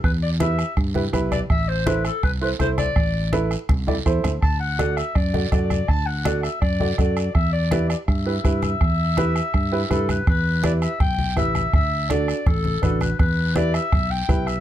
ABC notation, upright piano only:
X:1
M:4/4
L:1/8
Q:1/4=164
K:Em
V:1 name="Upright piano"
z2 [EGB] z2 [EGB] [EGB] z | z2 [EAc] z2 [EAc] [EAc] z | z2 [EAB] z2 [EAd] [EAc] z | z2 [FAd] z2 [FAd] [FAd] z |
z2 [FAd] z2 [FAd] [FAd] z | z2 [EGB] z2 [EGB] [EGB] z | z2 [EGB] z2 [EGB] [EGB] z | z2 [EGB] z3 [EGB] z |
z2 [DFA] z3 [DFB] z | z2 [EGB] z3 [EGB] z |]